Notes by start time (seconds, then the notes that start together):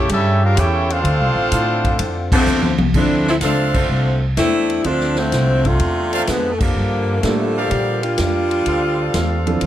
Already playing: C#3 C#4 E4 G4 A4 C#5 G5
0.00 C#4 E4
0.09 G2 G3 C#4 E4 G4 A4 E5, kick, ride
0.44 D4 F4 G4 A#4 F5
0.57 E2 C#4 E4 G4 A4 C#5 G5, kick, hi-hat pedal, ride
0.90 A3 C4 D4 F4 A4 C5 F5, ride
1.03 D2 D3 C4 F4, kick, ride
1.20 C2
1.35 A1
1.52 A2, kick, hi-hat pedal, ride
1.84 kick, ride
1.99 F2, kick, ride
2.32 D3 F3 A3 C4, kick, crash
2.46 E2, hi-hat pedal
2.62 D2, high tom
2.78 C2, high tom
2.94 D2 F3 A3 C4 D4 E4 A4, kick, crash
3.27 F3 A3 C4 E4, snare
3.41 C#2 F3 A3 C4 D4 A4 C5 D5 F5, kick, snare, hi-hat pedal, ride
3.74 D3 F3 A3 C4, kick, crash
3.90 C2
4.37 E2 A3 C4 D4 E4, kick, snare, hi-hat pedal, ride
4.70 ride
4.84 D2 F3 A3 C4 D4 F4 A4 E5, kick, ride
5.00 snare
5.16 D3 F3 A3 C4, snare
5.32 C2, kick, snare, hi-hat pedal, ride
5.65 C3 D3 A3 F4, kick, ride
5.80 E2, kick, ride
6.12 A4 C5 D5 F5, ride
6.27 F2 D3 F3 G#3 B3, kick, snare, hi-hat pedal, ride
6.52 A3
6.60 D3 F3 G3 A#3, kick, crash
6.76 G2
7.21 A2 D3 F3 G3 A3 A#3 D4 F4 A4, kick, snare, hi-hat pedal, ride
7.56 G4 A#4 D5 F5
7.70 A#2 D3 F3 G3, kick, ride
8.02 G3 A#3 D4 F4, ride
8.18 F2, kick, snare, hi-hat pedal, ride
8.51 ride
8.66 D2 A4 C5 D5 F5, kick, ride
9.14 E2, kick, snare, hi-hat pedal, ride
9.46 E3 F3 C4 D4 A4, ride
9.61 D2, kick, ride